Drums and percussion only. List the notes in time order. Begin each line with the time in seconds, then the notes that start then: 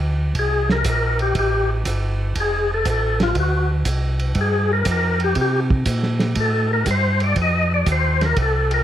0.35 kick, ride
0.69 snare
0.84 kick, hi-hat pedal, ride
1.19 ride
1.35 kick, ride
1.85 kick, hi-hat pedal, ride
2.35 kick, ride
2.85 kick, hi-hat pedal, ride
3.20 snare, ride
3.35 kick, ride
3.85 kick, hi-hat pedal, ride
4.19 ride
4.35 kick, ride
4.85 kick, hi-hat pedal, ride
5.20 ride
5.35 kick, ride
5.70 kick
5.86 kick, hi-hat pedal, ride
6.03 snare
6.19 snare, ride
6.35 kick, ride
6.86 kick, hi-hat pedal, ride
7.20 ride
7.36 kick, ride
7.86 kick, hi-hat pedal, ride
8.21 snare, ride
8.36 kick, ride
8.71 ride